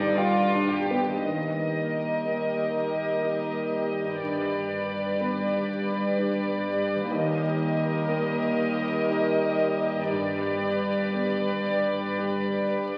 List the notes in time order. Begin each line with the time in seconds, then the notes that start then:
Already playing: G1 G2 B2 D3 B3 D4 D#4 G4 B4 D5
0.17 F4 G4
0.54 D4
0.72 G4
0.90 B3
1.07 D#3
1.11 A#3
1.15 D#4
1.20 G4 D#5
1.24 D#2 G3 G4 A#4
2.25 A#3
3.23 D#4 G4
4.03 G2
4.08 B3
4.12 D4
4.17 G4
4.21 G1 G2 B4 D5
5.20 B3
6.18 D4 G4
6.95 D#3
7.00 A#3
7.04 D#4
7.08 D#2 G5
7.13 D#2 G3 G4 A#4 D#5
8.08 A#3
9.10 D#4 G4
9.94 G2
9.98 B3
10.03 D4
10.11 G1 G2 B4 D5
11.14 B3
12.18 D4 G4